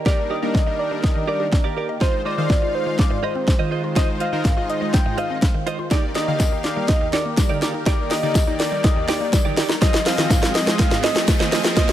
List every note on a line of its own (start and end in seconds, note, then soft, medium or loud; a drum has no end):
0.00 9.78 D#3 medium
0.00 1.98 A#3 medium
0.00 1.97 G4 medium
0.00 1.97 A#4 medium
0.06 0.36 G3 medium
0.06 0.36 D4 medium
0.06 0.36 D#4 medium
0.06 0.19 G4 medium
0.06 0.36 A#4 medium
0.06 0.19 A#4 medium
0.06 0.32 D5 loud
0.06 0.19 D5 loud
0.06 0.16 D#5 loud
0.06 kick loud
0.06 snare medium
0.30 0.40 G4 medium
0.30 0.40 A#4 medium
0.30 0.41 D5 medium
0.30 0.79 D#5 loud
0.42 0.63 G3 medium
0.42 0.53 A#3 medium
0.42 0.63 D4 medium
0.42 0.63 D#4 medium
0.42 0.53 G4 soft
0.42 0.53 A#4 medium
0.42 0.63 A#4 medium
0.42 0.52 D5 medium
0.55 0.65 D#3 medium
0.55 kick loud
0.55 snare medium
0.67 1.47 G3 medium
0.67 1.47 D4 medium
0.67 1.47 D#4 medium
0.67 1.47 A#4 medium
0.67 0.77 D#5 medium
0.67 muted clean electric guitar stroke medium
0.79 0.90 D5 loud
0.91 1.02 D4 medium
0.91 muted clean electric guitar stroke soft
1.03 1.30 D#5 loud
1.03 muted clean electric guitar stroke soft
1.03 kick loud
1.03 snare medium
1.16 1.26 D#3 medium
1.16 muted clean electric guitar stroke soft
1.28 1.40 G4 medium
1.28 1.39 A#4 medium
1.28 1.77 D5 loud
1.28 1.39 D5 medium
1.40 1.50 G4 medium
1.40 muted clean electric guitar stroke medium
1.52 1.62 D4 medium
1.52 muted clean electric guitar stroke soft
1.52 kick loud
1.52 snare medium
1.64 1.75 A#3 medium
1.64 1.75 G4 soft
1.64 1.75 A#4 medium
1.64 1.74 D5 medium
1.76 1.89 G4 medium
1.76 1.88 A#4 medium
1.76 1.87 D5 medium
1.89 1.99 D#5 medium
1.89 muted clean electric guitar stroke soft
2.01 2.21 G#3 medium
2.01 5.88 G#3 medium
2.01 2.21 D#4 medium
2.01 2.14 F4 medium
2.01 2.21 F4 medium
2.01 2.11 F4 loud
2.01 5.88 F4 medium
2.01 2.21 C5 medium
2.01 5.88 C5 medium
2.01 2.14 C5 medium
2.01 2.24 C5 loud
2.01 2.14 D#5 medium
2.01 kick loud
2.01 snare medium
2.25 2.35 G#3 medium
2.25 2.36 D#4 medium
2.25 2.35 F4 medium
2.25 2.36 F4 medium
2.25 2.36 C5 medium
2.25 2.76 D5 loud
2.25 2.36 D#5 medium
2.37 2.48 D#3 medium
2.37 3.18 G#3 medium
2.37 3.18 D#4 medium
2.37 3.18 F4 medium
2.37 2.48 F4 medium
2.37 2.48 C5 medium
2.37 2.48 D#5 medium
2.37 3.18 F5 medium
2.50 2.60 G#2 medium
2.50 kick loud
2.50 snare medium
2.62 2.72 F4 medium
2.62 muted clean electric guitar stroke soft
2.75 3.01 C5 loud
2.86 2.97 G#3 medium
2.86 muted clean electric guitar stroke soft
2.98 3.25 D5 loud
2.98 muted clean electric guitar stroke soft
2.98 kick loud
2.98 snare medium
3.10 3.21 G#2 medium
3.10 muted clean electric guitar stroke medium
3.23 3.36 F4 medium
3.23 3.34 C5 medium
3.23 3.72 C5 medium
3.23 3.34 D#5 medium
3.35 3.45 C4 medium
3.35 muted clean electric guitar stroke soft
3.47 3.57 G#3 medium
3.47 muted clean electric guitar stroke soft
3.47 kick loud
3.47 snare medium
3.59 3.70 D#3 medium
3.59 3.70 F4 medium
3.59 3.70 C5 medium
3.59 3.69 D#5 medium
3.71 3.84 F4 medium
3.71 3.83 C5 medium
3.71 3.82 D#5 medium
3.83 3.94 F4 medium
3.83 muted clean electric guitar stroke medium
3.96 4.26 G#3 medium
3.96 4.26 D#4 medium
3.96 4.09 F4 medium
3.96 4.06 F4 loud
3.96 4.26 F4 medium
3.96 4.09 C5 medium
3.96 4.26 C5 medium
3.96 4.09 D#5 medium
3.96 4.08 D#5 medium
3.96 kick loud
3.96 snare medium
3.96 closed hi-hat medium
4.20 4.30 F4 medium
4.20 4.31 C5 medium
4.20 4.31 D#5 medium
4.20 4.71 F5 loud
4.20 closed hi-hat medium
4.32 4.43 D#3 medium
4.32 4.53 G#3 medium
4.32 4.53 D#4 medium
4.32 4.53 F4 medium
4.32 4.43 F4 medium
4.32 4.53 A#4 medium
4.32 4.43 C5 medium
4.32 4.43 D#5 medium
4.45 4.55 G#2 medium
4.45 kick loud
4.45 snare medium
4.45 closed hi-hat medium
4.57 5.38 G#3 medium
4.57 5.38 D#4 medium
4.57 4.67 F4 medium
4.57 5.38 F4 medium
4.57 5.38 D#5 medium
4.57 muted clean electric guitar stroke medium
4.70 4.96 D#5 loud
4.70 closed hi-hat soft
4.81 4.92 G#3 medium
4.81 muted clean electric guitar stroke soft
4.93 5.20 G5 loud
4.93 muted clean electric guitar stroke soft
4.93 kick loud
4.93 snare medium
4.93 closed hi-hat medium
5.06 5.16 G#2 medium
5.06 muted clean electric guitar stroke medium
5.18 5.31 F4 medium
5.18 5.29 C5 medium
5.18 5.29 D#5 loud
5.18 5.67 F5 loud
5.18 closed hi-hat soft
5.30 5.40 C4 medium
5.30 muted clean electric guitar stroke soft
5.42 5.53 G#3 medium
5.42 kick loud
5.42 snare medium
5.42 closed hi-hat medium
5.54 5.65 D#3 medium
5.54 muted clean electric guitar stroke soft
5.66 5.79 F4 medium
5.66 5.78 C5 medium
5.66 5.78 D#5 medium
5.66 closed hi-hat soft
5.79 5.89 F4 medium
5.79 muted clean electric guitar stroke soft
5.91 6.11 A#3 medium
5.91 6.04 D#4 medium
5.91 6.11 D#4 medium
5.91 6.01 D#4 loud
5.91 6.11 G4 medium
5.91 6.04 G4 medium
5.91 6.02 D5 loud
5.91 6.11 D5 medium
5.91 6.04 D5 medium
5.91 kick loud
5.91 snare medium
5.91 closed hi-hat medium
5.91 riser medium
6.15 6.26 A#3 medium
6.15 6.25 D#4 medium
6.15 6.26 D#4 medium
6.15 6.26 G4 medium
6.15 6.26 D5 medium
6.15 6.66 D#5 loud
6.15 snare medium
6.15 closed hi-hat medium
6.27 6.38 D3 medium
6.27 7.08 A#3 medium
6.27 7.08 D#4 medium
6.27 6.38 D#4 medium
6.27 7.08 G4 medium
6.27 6.38 G4 medium
6.27 6.38 D5 medium
6.27 7.08 F5 medium
6.40 6.50 D#2 medium
6.40 kick loud
6.40 snare medium
6.40 closed hi-hat medium
6.40 tambourine medium
6.52 6.62 D#4 medium
6.52 muted clean electric guitar stroke soft
6.64 6.90 D5 loud
6.64 snare medium
6.64 closed hi-hat soft
6.77 6.87 G3 medium
6.77 muted clean electric guitar stroke soft
6.88 7.12 D#5 loud
6.88 muted clean electric guitar stroke soft
6.88 kick loud
6.88 snare medium
6.88 closed hi-hat medium
7.01 7.11 D#2 medium
7.01 muted clean electric guitar stroke medium
7.13 7.26 D#4 medium
7.13 7.25 G4 medium
7.13 7.58 D5 loud
7.13 7.24 D5 medium
7.13 snare medium
7.13 closed hi-hat soft
7.26 7.36 A#3 medium
7.37 7.48 G3 medium
7.37 muted clean electric guitar stroke soft
7.37 kick loud
7.37 snare medium
7.37 closed hi-hat medium
7.37 tambourine medium
7.49 7.60 D3 medium
7.49 7.60 D#4 soft
7.49 7.60 G4 medium
7.49 7.60 D5 medium
7.62 7.75 D#4 medium
7.62 7.74 G4 medium
7.62 7.73 D5 medium
7.62 snare medium
7.62 closed hi-hat medium
7.74 7.84 D#4 medium
7.74 muted clean electric guitar stroke soft
7.86 8.16 A#3 medium
7.86 7.99 D#4 medium
7.86 8.17 D#4 medium
7.86 7.97 D#4 loud
7.86 8.17 G4 medium
7.86 7.99 G4 medium
7.86 8.17 A#4 medium
7.86 8.13 D5 loud
7.86 8.00 D5 loud
7.86 kick loud
7.86 snare medium
7.86 closed hi-hat medium
8.11 8.21 D#4 medium
8.11 8.21 G4 medium
8.11 8.21 D5 medium
8.11 8.61 D#5 loud
8.11 snare medium
8.11 open hi-hat medium
8.23 8.33 D3 medium
8.23 8.43 A#3 medium
8.23 8.43 D#4 medium
8.23 8.33 D#4 medium
8.23 8.43 G4 medium
8.23 8.33 G4 medium
8.23 8.33 D5 medium
8.23 8.43 D5 medium
8.35 8.45 D#2 medium
8.35 muted clean electric guitar stroke soft
8.35 kick loud
8.35 snare loud
8.35 closed hi-hat medium
8.35 tambourine medium
8.47 9.28 A#3 medium
8.47 8.57 D#4 medium
8.47 9.28 D#4 medium
8.47 9.28 G4 medium
8.47 9.28 D5 medium
8.47 muted clean electric guitar stroke soft
8.60 8.86 D5 loud
8.60 snare medium
8.60 open hi-hat medium
8.72 8.82 G3 medium
8.72 muted clean electric guitar stroke medium
8.84 9.10 D#5 loud
8.84 muted clean electric guitar stroke soft
8.84 kick loud
8.84 snare loud
8.84 closed hi-hat medium
8.96 9.06 D#2 medium
8.96 muted clean electric guitar stroke soft
9.08 9.21 D#4 medium
9.08 9.20 G4 loud
9.08 9.57 D5 loud
9.08 9.19 D5 loud
9.08 snare loud
9.08 open hi-hat medium
9.20 9.31 A#3 medium
9.20 muted clean electric guitar stroke soft
9.32 9.43 G3 medium
9.32 muted clean electric guitar stroke soft
9.32 kick loud
9.32 snare loud
9.32 closed hi-hat medium
9.32 tambourine medium
9.45 9.55 D3 medium
9.45 9.55 D#4 medium
9.45 9.55 G4 medium
9.45 9.55 D5 medium
9.57 9.70 D#4 medium
9.57 9.69 G4 medium
9.57 9.68 D5 loud
9.57 snare loud
9.57 open hi-hat medium
9.69 9.79 D#4 medium
9.69 muted clean electric guitar stroke medium
9.69 snare loud
9.81 11.92 F3 medium
9.81 10.02 C4 medium
9.81 11.92 C4 medium
9.81 9.92 F4 loud
9.81 9.94 F4 medium
9.81 10.02 F4 medium
9.81 10.02 G#4 medium
9.81 11.92 G#4 medium
9.81 9.95 C5 medium
9.81 10.02 D#5 medium
9.81 11.92 D#5 medium
9.81 10.08 D#5 loud
9.81 9.95 D#5 loud
9.81 kick loud
9.81 snare loud
9.81 closed hi-hat medium
9.81 shaker medium
9.94 snare loud
9.94 shaker medium
10.06 10.16 C4 medium
10.06 10.16 F4 medium
10.06 10.16 G#4 medium
10.06 10.16 C5 medium
10.06 10.16 D#5 medium
10.06 10.56 F5 loud
10.06 snare loud
10.06 open hi-hat medium
10.06 shaker medium
10.18 10.28 D#3 medium
10.18 10.98 C4 medium
10.18 10.98 F4 medium
10.18 10.29 F4 medium
10.18 10.98 G#4 medium
10.18 10.28 C5 medium
10.18 10.28 D#5 medium
10.18 10.99 D#5 medium
10.18 snare loud
10.18 shaker medium
10.30 10.40 G#2 medium
10.30 kick loud
10.30 snare loud
10.30 closed hi-hat medium
10.30 tambourine medium
10.30 shaker medium
10.42 10.53 F4 medium
10.42 muted clean electric guitar stroke soft
10.42 snare loud
10.42 shaker medium
10.55 10.79 D#5 loud
10.55 snare loud
10.55 open hi-hat medium
10.55 shaker soft
10.67 10.77 G#3 medium
10.67 muted clean electric guitar stroke soft
10.67 snare loud
10.67 shaker medium
10.79 11.05 F5 loud
10.79 muted clean electric guitar stroke soft
10.79 kick loud
10.79 snare loud
10.79 closed hi-hat medium
10.79 shaker medium
10.91 11.01 G#2 medium
10.91 muted clean electric guitar stroke medium
10.91 snare loud
10.91 shaker medium
11.03 11.16 F4 medium
11.03 11.15 C5 medium
11.03 11.53 D#5 loud
11.03 11.15 D#5 medium
11.03 snare loud
11.03 open hi-hat medium
11.03 shaker soft
11.15 11.26 C4 medium
11.15 snare loud
11.15 shaker medium
11.28 11.38 G#3 medium
11.28 muted clean electric guitar stroke soft
11.28 kick loud
11.28 snare loud
11.28 closed hi-hat medium
11.28 tambourine medium
11.28 shaker medium
11.40 11.50 D#3 medium
11.40 11.51 F4 medium
11.40 11.50 C5 medium
11.40 11.50 D#5 medium
11.40 snare loud
11.40 shaker medium
11.52 11.65 F4 medium
11.52 11.64 C5 loud
11.52 11.63 D#5 loud
11.52 snare loud
11.52 open hi-hat medium
11.52 shaker medium
11.64 11.75 F4 medium
11.64 snare loud
11.64 shaker medium
11.76 11.92 C4 medium
11.76 11.87 F4 loud
11.76 11.92 F4 medium
11.76 11.89 F4 medium
11.76 11.92 G#4 medium
11.76 11.90 C5 medium
11.76 11.92 D#5 loud
11.76 11.92 D#5 medium
11.76 11.90 D#5 medium
11.76 kick loud
11.76 snare loud
11.76 closed hi-hat medium
11.76 shaker medium
11.89 snare loud
11.89 shaker medium